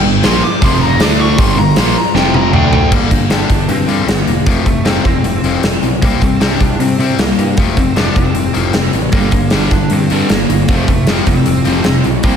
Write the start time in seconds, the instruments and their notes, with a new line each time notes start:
0.04 picked electric bass G1, distorted electric guitar G2 D3
0.23 picked electric bass A#1, distorted electric guitar A#2 F3 A#3, lead electric guitar C6, snare, open hi-hat
0.44 lead electric guitar D6
0.61 picked electric bass F1, distorted electric guitar F2 C3 F3, lead electric guitar C6, kick, open hi-hat
0.81 lead electric guitar A#5
1.00 picked electric bass D2, distorted electric guitar D3 A3 D4, lead electric guitar D6, snare, open hi-hat
1.20 lead electric guitar C#6
1.38 picked electric bass G1, distorted electric guitar G2 D3 G3, lead electric guitar C6, kick, open hi-hat
1.57 picked electric bass G1, distorted electric guitar G2 D3, lead electric guitar A#5
1.76 picked electric bass A#1, distorted electric guitar A#2 F3 A#3, lead electric guitar C6, snare, open hi-hat
1.98 lead electric guitar A#5
2.14 picked electric bass F1, distorted electric guitar F2 C3 F3, lead electric guitar G5, snare
2.34 lead electric guitar A#5, high tom
2.53 picked electric bass D2, distorted electric guitar D3 A3 D4, lead electric guitar G5, mid tom
2.73 lead electric guitar G5, floor tom
2.91 picked electric bass G1, distorted electric guitar G2 D3 G3, lead electric guitar A#3, kick, crash
3.11 picked electric bass G1, distorted electric guitar G2 D3, kick, open hi-hat
3.30 picked electric bass G1, distorted electric guitar G2 D3 G3, lead electric guitar D4, snare, open hi-hat
3.50 picked electric bass G1, distorted electric guitar G2 D3, kick, open hi-hat
3.69 picked electric bass G2, distorted electric guitar G2 D3, lead electric guitar C4, open hi-hat
3.87 picked electric bass G2, distorted electric guitar G2 D3 G3, open hi-hat
4.07 picked electric bass G1, distorted electric guitar G2 D3, lead electric guitar A#3, snare, open hi-hat
4.27 picked electric bass E1, distorted electric guitar G2 D3, open hi-hat
4.46 picked electric bass F1, distorted electric guitar F2 C3 F3, lead electric guitar A3, kick, open hi-hat
4.66 picked electric bass F1, distorted electric guitar F2 C3, lead electric guitar A3, kick, open hi-hat
4.85 picked electric bass F1, distorted electric guitar F2 C3 F3, lead electric guitar C4, snare, open hi-hat
5.05 picked electric bass F1, distorted electric guitar F2 C3, lead electric guitar C4, kick, open hi-hat
5.23 picked electric bass F1, distorted electric guitar F2 C3, open hi-hat
5.44 picked electric bass F1, distorted electric guitar F2 C3 F3, open hi-hat
5.63 picked electric bass F1, distorted electric guitar F2 C3, snare, open hi-hat
5.82 picked electric bass B1, distorted electric guitar F2 C3, open hi-hat
6.02 picked electric bass C2, distorted electric guitar C3 G3 C4, lead electric guitar A#3, kick, open hi-hat
6.21 picked electric bass C2, distorted electric guitar C3 G3, lead electric guitar C4, kick, open hi-hat
6.40 picked electric bass C2, distorted electric guitar C3 G3 C4, lead electric guitar D4, snare, open hi-hat
6.60 picked electric bass C2, distorted electric guitar C3 G3, kick, open hi-hat
6.79 picked electric bass C3, distorted electric guitar C3 G3, lead electric guitar C4, open hi-hat
6.98 picked electric bass C3, distorted electric guitar C3 G3 C4, open hi-hat
7.18 picked electric bass C2, distorted electric guitar C3 G3, lead electric guitar A#3, snare, open hi-hat
7.38 picked electric bass G2, distorted electric guitar C3 G3, open hi-hat
7.57 picked electric bass F1, distorted electric guitar F2 C3 F3, lead electric guitar A3, kick, open hi-hat
7.77 picked electric bass F1, distorted electric guitar F2 C3, lead electric guitar C4, kick, open hi-hat
7.96 picked electric bass F1, distorted electric guitar F2 C3 F3, lead electric guitar D4, snare, open hi-hat
8.16 picked electric bass F1, distorted electric guitar F2 C3, lead electric guitar C4, kick, open hi-hat
8.34 picked electric bass F1, distorted electric guitar F2 C3, open hi-hat
8.53 picked electric bass F1, distorted electric guitar F2 C3 F3, open hi-hat
8.73 picked electric bass F1, distorted electric guitar F2 C3, snare, open hi-hat
8.93 picked electric bass A1, distorted electric guitar F2 C3, open hi-hat
9.12 picked electric bass G1, distorted electric guitar G2 D3 G3, lead electric guitar A#3, kick, open hi-hat
9.31 picked electric bass G1, distorted electric guitar G2 D3, kick, open hi-hat
9.50 picked electric bass G1, distorted electric guitar G2 D3 G3, lead electric guitar D4, snare, open hi-hat
9.71 picked electric bass G1, distorted electric guitar G2 D3, kick, open hi-hat
9.90 distorted electric guitar G2 D3, picked electric bass G2, lead electric guitar C4, open hi-hat
10.10 distorted electric guitar G2 D3 G3, picked electric bass G2, open hi-hat
10.29 picked electric bass G1, distorted electric guitar G2 D3, lead electric guitar A#3, snare, open hi-hat
10.49 picked electric bass G1, distorted electric guitar G2 D3, open hi-hat
10.68 picked electric bass F1, distorted electric guitar F2 C3 F3, lead electric guitar A3, kick, open hi-hat
10.88 picked electric bass F1, distorted electric guitar F2 C3, lead electric guitar A3, kick, open hi-hat
11.07 picked electric bass F1, distorted electric guitar F2 C3 F3, snare, open hi-hat
11.11 lead electric guitar C4
11.26 picked electric bass F1, distorted electric guitar F2 C3, lead electric guitar C4, kick, open hi-hat
11.46 picked electric bass F1, distorted electric guitar F2 C3, open hi-hat
11.64 picked electric bass F1, distorted electric guitar F2 C3 F3, open hi-hat
11.84 picked electric bass F1, distorted electric guitar F2 C3, snare, open hi-hat
12.04 picked electric bass B1, distorted electric guitar F2 C3, open hi-hat
12.23 picked electric bass C2, distorted electric guitar C3 G3 C4, lead electric guitar A#3, kick, open hi-hat